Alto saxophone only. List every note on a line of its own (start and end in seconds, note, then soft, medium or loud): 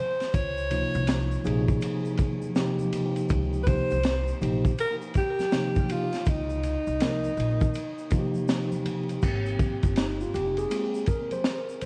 0.00 0.36 C5 medium
0.34 1.45 C#5 medium
3.63 3.69 B4 medium
3.68 4.42 C5 loud
4.80 4.96 A#4 loud
5.17 5.93 G4 loud
5.92 6.31 F4 medium
6.29 8.50 D#4 medium